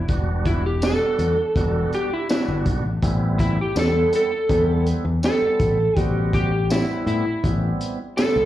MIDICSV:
0, 0, Header, 1, 6, 480
1, 0, Start_track
1, 0, Tempo, 734394
1, 56, Time_signature, 4, 2, 24, 8
1, 5525, End_track
2, 0, Start_track
2, 0, Title_t, "Electric slide guitar"
2, 0, Program_c, 0, 29
2, 303, Note_on_c, 0, 64, 87
2, 421, Note_off_c, 0, 64, 0
2, 432, Note_on_c, 0, 67, 75
2, 539, Note_off_c, 0, 67, 0
2, 550, Note_on_c, 0, 69, 102
2, 1242, Note_off_c, 0, 69, 0
2, 1271, Note_on_c, 0, 67, 77
2, 1385, Note_off_c, 0, 67, 0
2, 1395, Note_on_c, 0, 64, 69
2, 1501, Note_off_c, 0, 64, 0
2, 1508, Note_on_c, 0, 64, 81
2, 1736, Note_off_c, 0, 64, 0
2, 2222, Note_on_c, 0, 64, 82
2, 2341, Note_off_c, 0, 64, 0
2, 2361, Note_on_c, 0, 67, 64
2, 2464, Note_off_c, 0, 67, 0
2, 2475, Note_on_c, 0, 69, 88
2, 2700, Note_off_c, 0, 69, 0
2, 2716, Note_on_c, 0, 69, 90
2, 3173, Note_off_c, 0, 69, 0
2, 3434, Note_on_c, 0, 69, 102
2, 3905, Note_off_c, 0, 69, 0
2, 3905, Note_on_c, 0, 67, 102
2, 4125, Note_off_c, 0, 67, 0
2, 4145, Note_on_c, 0, 67, 85
2, 4375, Note_off_c, 0, 67, 0
2, 4390, Note_on_c, 0, 64, 83
2, 4617, Note_off_c, 0, 64, 0
2, 4626, Note_on_c, 0, 64, 89
2, 4855, Note_off_c, 0, 64, 0
2, 5341, Note_on_c, 0, 69, 104
2, 5525, Note_off_c, 0, 69, 0
2, 5525, End_track
3, 0, Start_track
3, 0, Title_t, "Tonewheel organ"
3, 0, Program_c, 1, 16
3, 57, Note_on_c, 1, 55, 64
3, 60, Note_on_c, 1, 59, 61
3, 62, Note_on_c, 1, 62, 60
3, 65, Note_on_c, 1, 66, 77
3, 419, Note_off_c, 1, 55, 0
3, 421, Note_off_c, 1, 59, 0
3, 421, Note_off_c, 1, 62, 0
3, 423, Note_off_c, 1, 66, 0
3, 537, Note_on_c, 1, 55, 60
3, 540, Note_on_c, 1, 59, 62
3, 542, Note_on_c, 1, 62, 53
3, 546, Note_on_c, 1, 66, 69
3, 899, Note_off_c, 1, 55, 0
3, 901, Note_off_c, 1, 59, 0
3, 902, Note_off_c, 1, 62, 0
3, 904, Note_off_c, 1, 66, 0
3, 1017, Note_on_c, 1, 55, 64
3, 1020, Note_on_c, 1, 59, 60
3, 1024, Note_on_c, 1, 62, 63
3, 1027, Note_on_c, 1, 66, 70
3, 1379, Note_off_c, 1, 55, 0
3, 1381, Note_off_c, 1, 59, 0
3, 1383, Note_off_c, 1, 62, 0
3, 1384, Note_off_c, 1, 66, 0
3, 1498, Note_on_c, 1, 55, 69
3, 1501, Note_on_c, 1, 59, 61
3, 1504, Note_on_c, 1, 62, 58
3, 1507, Note_on_c, 1, 66, 72
3, 1860, Note_off_c, 1, 55, 0
3, 1862, Note_off_c, 1, 59, 0
3, 1863, Note_off_c, 1, 62, 0
3, 1865, Note_off_c, 1, 66, 0
3, 1978, Note_on_c, 1, 55, 85
3, 1978, Note_on_c, 1, 59, 78
3, 1981, Note_on_c, 1, 60, 75
3, 1984, Note_on_c, 1, 64, 87
3, 2340, Note_off_c, 1, 55, 0
3, 2340, Note_off_c, 1, 59, 0
3, 2342, Note_off_c, 1, 60, 0
3, 2343, Note_off_c, 1, 64, 0
3, 2455, Note_on_c, 1, 55, 69
3, 2458, Note_on_c, 1, 59, 58
3, 2461, Note_on_c, 1, 60, 55
3, 2464, Note_on_c, 1, 64, 72
3, 2819, Note_off_c, 1, 55, 0
3, 2820, Note_off_c, 1, 59, 0
3, 2822, Note_off_c, 1, 60, 0
3, 2823, Note_off_c, 1, 64, 0
3, 2936, Note_on_c, 1, 55, 70
3, 2939, Note_on_c, 1, 59, 63
3, 2940, Note_on_c, 1, 60, 62
3, 2945, Note_on_c, 1, 64, 72
3, 3299, Note_off_c, 1, 55, 0
3, 3301, Note_off_c, 1, 59, 0
3, 3302, Note_off_c, 1, 60, 0
3, 3304, Note_off_c, 1, 64, 0
3, 3417, Note_on_c, 1, 55, 62
3, 3420, Note_on_c, 1, 59, 62
3, 3424, Note_on_c, 1, 60, 63
3, 3428, Note_on_c, 1, 64, 67
3, 3780, Note_off_c, 1, 55, 0
3, 3782, Note_off_c, 1, 59, 0
3, 3783, Note_off_c, 1, 60, 0
3, 3785, Note_off_c, 1, 64, 0
3, 3897, Note_on_c, 1, 55, 65
3, 3899, Note_on_c, 1, 59, 58
3, 3903, Note_on_c, 1, 60, 67
3, 3906, Note_on_c, 1, 66, 87
3, 4260, Note_off_c, 1, 55, 0
3, 4261, Note_off_c, 1, 59, 0
3, 4263, Note_off_c, 1, 60, 0
3, 4264, Note_off_c, 1, 66, 0
3, 4375, Note_on_c, 1, 55, 61
3, 4378, Note_on_c, 1, 59, 61
3, 4382, Note_on_c, 1, 60, 58
3, 4385, Note_on_c, 1, 64, 74
3, 4739, Note_off_c, 1, 55, 0
3, 4740, Note_off_c, 1, 59, 0
3, 4742, Note_off_c, 1, 60, 0
3, 4744, Note_off_c, 1, 64, 0
3, 4857, Note_on_c, 1, 55, 68
3, 4859, Note_on_c, 1, 59, 67
3, 4863, Note_on_c, 1, 60, 69
3, 4866, Note_on_c, 1, 64, 77
3, 5220, Note_off_c, 1, 55, 0
3, 5221, Note_off_c, 1, 59, 0
3, 5223, Note_off_c, 1, 60, 0
3, 5224, Note_off_c, 1, 64, 0
3, 5338, Note_on_c, 1, 55, 70
3, 5340, Note_on_c, 1, 59, 66
3, 5344, Note_on_c, 1, 60, 62
3, 5348, Note_on_c, 1, 64, 72
3, 5525, Note_off_c, 1, 55, 0
3, 5525, Note_off_c, 1, 59, 0
3, 5525, Note_off_c, 1, 60, 0
3, 5525, Note_off_c, 1, 64, 0
3, 5525, End_track
4, 0, Start_track
4, 0, Title_t, "Fingered electric bass"
4, 0, Program_c, 2, 33
4, 57, Note_on_c, 2, 28, 80
4, 603, Note_off_c, 2, 28, 0
4, 776, Note_on_c, 2, 40, 96
4, 871, Note_off_c, 2, 40, 0
4, 1016, Note_on_c, 2, 28, 98
4, 1199, Note_off_c, 2, 28, 0
4, 1622, Note_on_c, 2, 31, 93
4, 1709, Note_off_c, 2, 31, 0
4, 1736, Note_on_c, 2, 35, 79
4, 1849, Note_off_c, 2, 35, 0
4, 1859, Note_on_c, 2, 33, 68
4, 1964, Note_off_c, 2, 33, 0
4, 1976, Note_on_c, 2, 33, 85
4, 2341, Note_off_c, 2, 33, 0
4, 2456, Note_on_c, 2, 40, 78
4, 2639, Note_off_c, 2, 40, 0
4, 2938, Note_on_c, 2, 40, 90
4, 3215, Note_off_c, 2, 40, 0
4, 3299, Note_on_c, 2, 40, 91
4, 3388, Note_off_c, 2, 40, 0
4, 3657, Note_on_c, 2, 33, 76
4, 3840, Note_off_c, 2, 33, 0
4, 3899, Note_on_c, 2, 33, 85
4, 4446, Note_off_c, 2, 33, 0
4, 4618, Note_on_c, 2, 45, 95
4, 4712, Note_off_c, 2, 45, 0
4, 4862, Note_on_c, 2, 33, 105
4, 5043, Note_off_c, 2, 33, 0
4, 5462, Note_on_c, 2, 36, 98
4, 5525, Note_off_c, 2, 36, 0
4, 5525, End_track
5, 0, Start_track
5, 0, Title_t, "Muted fingered electric bass strokes"
5, 902, Note_on_c, 9, 29, 34
5, 968, Note_off_c, 9, 29, 0
5, 3542, Note_on_c, 9, 29, 41
5, 3607, Note_off_c, 9, 29, 0
5, 4745, Note_on_c, 9, 29, 36
5, 4810, Note_off_c, 9, 29, 0
5, 5525, End_track
6, 0, Start_track
6, 0, Title_t, "Drums"
6, 55, Note_on_c, 9, 42, 69
6, 58, Note_on_c, 9, 36, 95
6, 120, Note_off_c, 9, 42, 0
6, 123, Note_off_c, 9, 36, 0
6, 297, Note_on_c, 9, 42, 64
6, 298, Note_on_c, 9, 36, 79
6, 362, Note_off_c, 9, 42, 0
6, 363, Note_off_c, 9, 36, 0
6, 536, Note_on_c, 9, 42, 88
6, 536, Note_on_c, 9, 54, 107
6, 544, Note_on_c, 9, 38, 121
6, 601, Note_off_c, 9, 42, 0
6, 601, Note_off_c, 9, 54, 0
6, 609, Note_off_c, 9, 38, 0
6, 777, Note_on_c, 9, 42, 55
6, 842, Note_off_c, 9, 42, 0
6, 1018, Note_on_c, 9, 36, 77
6, 1019, Note_on_c, 9, 42, 72
6, 1083, Note_off_c, 9, 36, 0
6, 1084, Note_off_c, 9, 42, 0
6, 1259, Note_on_c, 9, 42, 52
6, 1324, Note_off_c, 9, 42, 0
6, 1499, Note_on_c, 9, 42, 75
6, 1499, Note_on_c, 9, 54, 110
6, 1507, Note_on_c, 9, 38, 105
6, 1564, Note_off_c, 9, 42, 0
6, 1564, Note_off_c, 9, 54, 0
6, 1572, Note_off_c, 9, 38, 0
6, 1737, Note_on_c, 9, 42, 69
6, 1738, Note_on_c, 9, 36, 73
6, 1802, Note_off_c, 9, 42, 0
6, 1803, Note_off_c, 9, 36, 0
6, 1977, Note_on_c, 9, 42, 85
6, 1978, Note_on_c, 9, 36, 86
6, 2042, Note_off_c, 9, 42, 0
6, 2043, Note_off_c, 9, 36, 0
6, 2217, Note_on_c, 9, 36, 76
6, 2217, Note_on_c, 9, 42, 61
6, 2282, Note_off_c, 9, 42, 0
6, 2283, Note_off_c, 9, 36, 0
6, 2457, Note_on_c, 9, 42, 91
6, 2457, Note_on_c, 9, 54, 113
6, 2465, Note_on_c, 9, 38, 104
6, 2523, Note_off_c, 9, 42, 0
6, 2523, Note_off_c, 9, 54, 0
6, 2530, Note_off_c, 9, 38, 0
6, 2697, Note_on_c, 9, 42, 68
6, 2763, Note_off_c, 9, 42, 0
6, 2937, Note_on_c, 9, 42, 74
6, 2938, Note_on_c, 9, 36, 74
6, 3003, Note_off_c, 9, 36, 0
6, 3003, Note_off_c, 9, 42, 0
6, 3179, Note_on_c, 9, 42, 60
6, 3245, Note_off_c, 9, 42, 0
6, 3419, Note_on_c, 9, 42, 66
6, 3419, Note_on_c, 9, 54, 105
6, 3427, Note_on_c, 9, 38, 92
6, 3484, Note_off_c, 9, 42, 0
6, 3484, Note_off_c, 9, 54, 0
6, 3492, Note_off_c, 9, 38, 0
6, 3657, Note_on_c, 9, 42, 58
6, 3659, Note_on_c, 9, 36, 78
6, 3723, Note_off_c, 9, 42, 0
6, 3724, Note_off_c, 9, 36, 0
6, 3899, Note_on_c, 9, 36, 96
6, 3899, Note_on_c, 9, 42, 74
6, 3964, Note_off_c, 9, 42, 0
6, 3965, Note_off_c, 9, 36, 0
6, 4140, Note_on_c, 9, 36, 80
6, 4140, Note_on_c, 9, 42, 61
6, 4205, Note_off_c, 9, 36, 0
6, 4205, Note_off_c, 9, 42, 0
6, 4382, Note_on_c, 9, 42, 86
6, 4382, Note_on_c, 9, 54, 112
6, 4390, Note_on_c, 9, 38, 107
6, 4447, Note_off_c, 9, 42, 0
6, 4447, Note_off_c, 9, 54, 0
6, 4455, Note_off_c, 9, 38, 0
6, 4622, Note_on_c, 9, 42, 52
6, 4687, Note_off_c, 9, 42, 0
6, 4862, Note_on_c, 9, 36, 78
6, 4863, Note_on_c, 9, 42, 77
6, 4927, Note_off_c, 9, 36, 0
6, 4928, Note_off_c, 9, 42, 0
6, 5103, Note_on_c, 9, 42, 60
6, 5168, Note_off_c, 9, 42, 0
6, 5343, Note_on_c, 9, 42, 78
6, 5343, Note_on_c, 9, 54, 105
6, 5351, Note_on_c, 9, 38, 104
6, 5409, Note_off_c, 9, 42, 0
6, 5409, Note_off_c, 9, 54, 0
6, 5417, Note_off_c, 9, 38, 0
6, 5525, End_track
0, 0, End_of_file